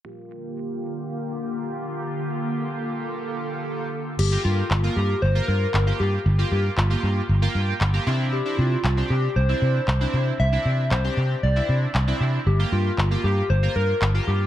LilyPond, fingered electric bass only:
\new Staff \with { instrumentName = "Fingered electric bass" } { \clef bass \time 4/4 \key g \dorian \tempo 4 = 116 r1 | r1 | g,,8 g,8 g,,8 g,8 g,,8 g,8 g,,8 g,8 | g,,8 g,8 g,,8 g,8 g,,8 g,8 g,,8 c8~ |
c8 c8 c,8 c8 c,8 c8 c,8 c8 | c,8 c8 c,8 c8 c,8 c8 c,8 c8 | g,,8 g,8 g,,8 g,8 g,,8 g,8 g,,8 g,8 | }